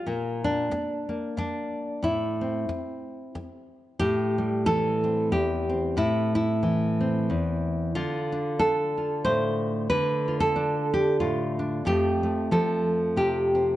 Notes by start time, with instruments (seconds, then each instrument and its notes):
Already playing: nylon-string guitar F4
0.07 nylon-string guitar A#2 A#3
0.44 nylon-string guitar D4
0.71 muted nylon-string guitar stroke
1.09 nylon-string guitar A#3
1.37 nylon-string guitar D4, muted nylon-string guitar stroke
2.03 nylon-string guitar A2 E4
2.41 nylon-string guitar C4
2.69 muted nylon-string guitar stroke
3.35 muted nylon-string guitar stroke
3.99 nylon-string guitar A2 G4
4.38 nylon-string guitar G3
4.66 nylon-string guitar E3 A4
5.04 nylon-string guitar C4
5.32 nylon-string guitar E2 G4
5.69 nylon-string guitar C4
5.97 nylon-string guitar A2 E4
6.35 nylon-string guitar E4
6.63 nylon-string guitar E3
7.01 nylon-string guitar C4
7.30 nylon-string guitar E2
7.95 nylon-string guitar D3 F4
8.32 nylon-string guitar D4
8.59 nylon-string guitar D4 A4
8.97 nylon-string guitar F4
9.25 nylon-string guitar A2 C5
9.90 nylon-string guitar D3 B4
10.28 nylon-string guitar F4
10.40 nylon-string guitar A4
10.56 nylon-string guitar D4
10.94 nylon-string guitar G4
11.20 nylon-string guitar A2 F4
11.59 nylon-string guitar D4
11.85 nylon-string guitar F2 F3 A3 C4 G4
12.23 nylon-string guitar A3
12.51 nylon-string guitar F3 A4
13.16 nylon-string guitar C3 G4
13.55 nylon-string guitar C4